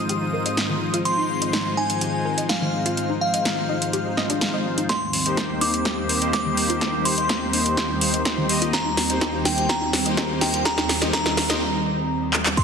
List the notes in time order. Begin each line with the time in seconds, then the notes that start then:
Already playing: G#2 D#3 F3 G#3 C4 D#4 F4 C5 D#6
0.09 G4, closed hi-hat
0.33 A#4
0.46 D#5, closed hi-hat
0.57 snare, closed hi-hat
0.70 D#3
0.94 F4, closed hi-hat
1.05 G#3 D#4 F4 C5 C6, closed hi-hat
1.18 D#4
1.42 D#5, closed hi-hat
1.53 D#4, snare, closed hi-hat
1.77 D#4 G#5
1.90 closed hi-hat
2.01 G4, closed hi-hat
2.25 A#4
2.38 D#5, closed hi-hat
2.49 F5, snare, closed hi-hat
2.62 D#3
2.86 F4, closed hi-hat
2.97 closed hi-hat
3.10 D#4
3.21 F5
3.34 D#5, closed hi-hat
3.45 D#4, snare, closed hi-hat
3.69 D#4
3.82 closed hi-hat
3.93 G4, closed hi-hat
4.17 D#5, snare
4.30 D4, closed hi-hat
4.41 snare, closed hi-hat
4.54 D#5
4.78 D#4, closed hi-hat
4.89 D#2 D#3 G3 C4 C6, kick, snare, closed hi-hat
5.02 D#4
5.13 open hi-hat
5.26 A#3 D#4 G4 C5 D#5, closed hi-hat
5.37 D#4, kick, snare, closed hi-hat
5.61 D#4 D6, open hi-hat
5.74 closed hi-hat
5.85 G4, kick, snare, closed hi-hat
6.09 A#4, open hi-hat
6.22 A#3 D#4 G4 C5 D#5, closed hi-hat
6.33 D6, kick, snare, closed hi-hat
6.46 D#3
6.57 open hi-hat
6.70 F4, closed hi-hat
6.81 kick, snare, closed hi-hat
6.94 D#4
7.05 C6, open hi-hat
7.18 A#3 D#4 G4 C5 D#5, closed hi-hat
7.29 D#4, kick, snare, closed hi-hat
7.53 D#4, open hi-hat
7.66 closed hi-hat
7.77 G4, kick, snare, closed hi-hat
8.01 A#4, open hi-hat
8.14 D#5, closed hi-hat
8.25 A#3 D#4 G4 C5, kick, snare, closed hi-hat
8.38 D#3
8.49 A#3 D#4 G4 D#5, open hi-hat
8.62 F4, closed hi-hat
8.73 A#5, kick, snare, closed hi-hat
8.86 D#4
8.97 snare, open hi-hat
9.10 A#3 D#4 G4 C5 D#5, closed hi-hat
9.21 D#4, kick, snare, closed hi-hat
9.45 D#4 G5, snare, open hi-hat
9.58 closed hi-hat
9.69 A#5, kick, snare, closed hi-hat
9.82 D#4
9.93 snare, open hi-hat
10.06 A#3 D#4 G4 C5 D#5, closed hi-hat
10.17 D#4, kick, snare, closed hi-hat
10.41 D#4 G5, snare, open hi-hat
10.54 closed hi-hat
10.65 A#5, kick, snare, closed hi-hat
10.78 D#4, snare
10.89 snare, open hi-hat
11.02 A#3 D#4 G4 C5 D#5, snare, closed hi-hat
11.13 A#5, kick, snare, closed hi-hat
11.26 D#4, snare
11.37 snare, open hi-hat
11.50 A#3 D#4 G4 C5 D#5, snare, closed hi-hat
12.33 clap
12.46 clap
12.57 D#3 A#3 C4 C6, kick, closed hi-hat, crash